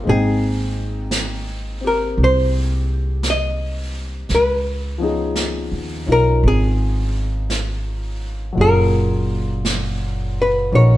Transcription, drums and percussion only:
0.05 brush sweep
1.11 brush sweep, snare, hi-hat pedal
2.18 brush sweep
3.23 brush sweep, snare, hi-hat pedal
4.29 brush sweep, snare
5.36 brush sweep, snare, hi-hat pedal
6.43 brush sweep
7.50 brush sweep, snare, hi-hat pedal
8.58 brush sweep
9.65 brush sweep, snare, hi-hat pedal
10.71 brush sweep

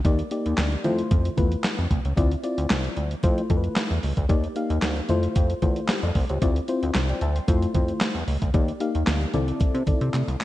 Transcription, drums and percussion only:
0.05 kick, closed hi-hat, muted conga
0.19 closed hi-hat
0.31 closed hi-hat
0.46 closed hi-hat
0.57 snare, clap, closed hi-hat, high conga
0.72 closed hi-hat
0.84 closed hi-hat, low conga
0.99 closed hi-hat
1.11 kick, closed hi-hat, muted conga, low conga
1.25 closed hi-hat
1.38 kick, closed hi-hat, muted conga, low conga
1.52 closed hi-hat
1.64 snare, clap, closed hi-hat, high conga
1.79 closed hi-hat
1.91 kick, closed hi-hat, high conga
2.05 closed hi-hat
2.17 kick, closed hi-hat, muted conga
2.31 closed hi-hat
2.44 closed hi-hat
2.58 closed hi-hat
2.70 snare, clap, closed hi-hat, high conga
2.84 closed hi-hat
2.97 closed hi-hat
3.11 closed hi-hat
3.23 kick, closed hi-hat, muted conga
3.38 closed hi-hat
3.50 kick, closed hi-hat, muted conga, low conga
3.64 closed hi-hat
3.76 snare, clap, closed hi-hat, high conga
3.91 closed hi-hat
4.03 open hi-hat, high conga
4.17 kick, closed hi-hat
4.29 kick, closed hi-hat, muted conga
4.44 closed hi-hat
4.56 closed hi-hat
4.70 closed hi-hat
4.82 snare, clap, closed hi-hat, high conga
4.96 closed hi-hat
5.09 closed hi-hat, low conga
5.23 closed hi-hat
5.35 kick, closed hi-hat, muted conga
5.50 closed hi-hat
5.62 kick, closed hi-hat, low conga
5.76 closed hi-hat
5.88 snare, clap, closed hi-hat, high conga
6.03 closed hi-hat
6.15 kick, open hi-hat, high conga
6.29 closed hi-hat
6.42 kick, closed hi-hat, muted conga
6.56 closed hi-hat
6.68 closed hi-hat
6.83 closed hi-hat
6.94 snare, clap, closed hi-hat, high conga
7.09 closed hi-hat
7.21 closed hi-hat
7.36 closed hi-hat
7.48 kick, closed hi-hat, muted conga
7.62 closed hi-hat
7.74 kick, closed hi-hat, muted conga, low conga
7.88 closed hi-hat
8.01 snare, clap, closed hi-hat, high conga
8.15 closed hi-hat
8.28 open hi-hat, high conga
8.42 kick, closed hi-hat
8.54 kick, closed hi-hat, muted conga
8.68 closed hi-hat
8.80 closed hi-hat
8.95 closed hi-hat
9.07 snare, clap, closed hi-hat, high conga
9.21 closed hi-hat
9.34 closed hi-hat, low conga
9.48 closed hi-hat
9.60 kick, closed hi-hat, muted conga
9.75 closed hi-hat
9.87 kick, closed hi-hat, muted conga, low conga
10.01 closed hi-hat
10.14 clap, closed hi-hat, high conga
10.27 closed hi-hat, high conga
10.40 clap, closed hi-hat, high conga

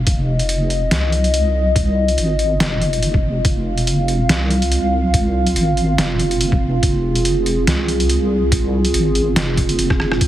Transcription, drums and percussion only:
0.07 kick, closed hi-hat
0.39 closed hi-hat
0.49 closed hi-hat
0.70 closed hi-hat
0.91 snare, closed hi-hat
1.12 closed hi-hat
1.24 closed hi-hat
1.34 closed hi-hat
1.76 kick, closed hi-hat
2.08 closed hi-hat
2.18 closed hi-hat
2.39 closed hi-hat
2.60 snare, closed hi-hat
2.82 closed hi-hat
2.93 closed hi-hat
3.03 closed hi-hat
3.14 kick
3.45 kick, closed hi-hat
3.78 closed hi-hat
3.87 closed hi-hat
4.08 closed hi-hat
4.29 snare, closed hi-hat
4.51 closed hi-hat
4.62 closed hi-hat
4.72 closed hi-hat
5.14 kick, closed hi-hat
5.47 closed hi-hat
5.56 closed hi-hat
5.77 closed hi-hat
5.98 snare, closed hi-hat
6.20 closed hi-hat
6.31 closed hi-hat
6.41 closed hi-hat
6.52 kick
6.83 kick, closed hi-hat
7.15 closed hi-hat
7.25 closed hi-hat
7.46 closed hi-hat
7.67 snare, closed hi-hat
7.88 closed hi-hat
8.00 closed hi-hat
8.10 closed hi-hat
8.52 kick, closed hi-hat
8.85 closed hi-hat
8.94 closed hi-hat
9.15 closed hi-hat
9.36 snare, closed hi-hat
9.57 kick, closed hi-hat
9.69 closed hi-hat
9.79 closed hi-hat
9.90 kick, cross-stick
10.00 cross-stick
10.12 cross-stick
10.21 kick, closed hi-hat

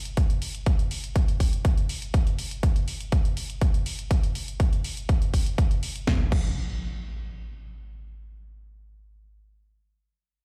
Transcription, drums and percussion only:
0.05 closed hi-hat
0.17 kick, closed hi-hat
0.30 closed hi-hat
0.42 open hi-hat
0.55 closed hi-hat
0.66 kick, closed hi-hat
0.79 closed hi-hat
0.91 open hi-hat
1.04 closed hi-hat
1.16 kick, closed hi-hat
1.28 closed hi-hat
1.40 kick, open hi-hat
1.53 closed hi-hat
1.65 kick, closed hi-hat
1.78 closed hi-hat
1.89 open hi-hat
2.02 closed hi-hat
2.14 kick, closed hi-hat
2.27 closed hi-hat
2.39 open hi-hat
2.51 closed hi-hat
2.63 kick, closed hi-hat
2.76 closed hi-hat
2.88 open hi-hat
3.00 closed hi-hat
3.12 kick, closed hi-hat
3.25 closed hi-hat
3.37 open hi-hat
3.50 closed hi-hat
3.61 kick, closed hi-hat
3.74 closed hi-hat
3.86 open hi-hat
3.99 closed hi-hat
4.11 kick, closed hi-hat
4.23 closed hi-hat
4.35 open hi-hat
4.48 closed hi-hat
4.60 kick, closed hi-hat
4.73 closed hi-hat
4.84 open hi-hat
4.97 closed hi-hat
5.09 kick, closed hi-hat
5.22 closed hi-hat
5.34 kick, open hi-hat
5.46 closed hi-hat
5.58 kick, closed hi-hat
5.71 closed hi-hat
5.83 open hi-hat
5.96 closed hi-hat
6.07 kick, snare
6.32 kick, crash

